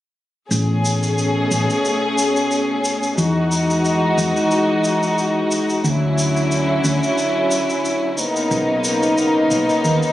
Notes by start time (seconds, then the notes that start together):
0.51 A1 B2 A3 C#4 G#4, shaker
0.85 shaker
1.03 shaker
1.18 shaker
1.51 A1, shaker
1.70 shaker
1.85 shaker
2.18 shaker
2.36 shaker
2.51 shaker
2.85 shaker
3.03 shaker
3.18 E2 E3 G#3 D#4 F#4, shaker
3.52 shaker
3.70 shaker
3.85 shaker
4.18 E2, shaker
4.37 shaker
4.51 shaker
4.85 shaker
5.03 shaker
5.18 shaker
5.52 shaker
5.70 shaker
5.84 D2 D3 F#3 C#4 E4, shaker
6.19 shaker
6.37 shaker
6.52 shaker
6.84 D2, shaker
7.03 shaker
7.18 shaker
7.51 shaker
7.70 shaker
7.85 shaker
8.17 C#3 A#3 B3 D#4, shaker
8.36 shaker
8.51 B1, shaker
8.85 shaker
9.03 shaker
9.18 shaker
9.51 B1, shaker
9.70 shaker
9.84 D#2, shaker
10.03 shaker